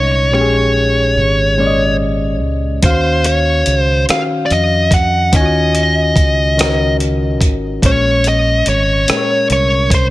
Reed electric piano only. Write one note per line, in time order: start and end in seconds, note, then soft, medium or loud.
0.00 0.20 A#2 medium
0.00 0.20 G#3 soft
0.00 0.21 C#4 soft
0.00 0.21 D#4 medium
0.31 1.45 A#2 medium
0.31 1.45 G#3 medium
0.31 1.46 C#4 medium
0.31 0.40 G4 medium
0.41 1.49 G#4 medium
1.57 2.70 A#2 medium
1.57 2.70 G#3 medium
1.57 2.71 C#4 medium
1.57 1.65 D5 medium
1.67 2.75 D#5 medium
2.82 3.95 D#3 medium
2.82 3.96 C#4 medium
2.82 3.96 F#4 medium
2.82 3.97 F5 medium
4.08 5.20 D#3 medium
4.08 5.21 C#4 medium
4.08 5.21 F#4 soft
4.08 5.22 F5 medium
5.33 6.45 D#3 medium
5.33 6.46 C#4 medium
5.33 5.40 F4 medium
5.33 6.47 G#5 medium
5.41 6.49 F#4 medium
6.57 7.70 D#3 medium
6.57 7.71 C#4 medium
6.57 7.71 F#4 medium
6.57 7.72 A#4 medium
7.83 8.95 A#2 medium
7.83 8.96 G#3 medium
7.83 8.96 C#4 medium
7.83 8.97 C#5 medium
9.07 10.11 A#2 medium
9.07 10.11 G#3 medium
9.07 10.11 C#4 soft
9.07 9.15 A#4 soft
9.17 10.11 C#5 medium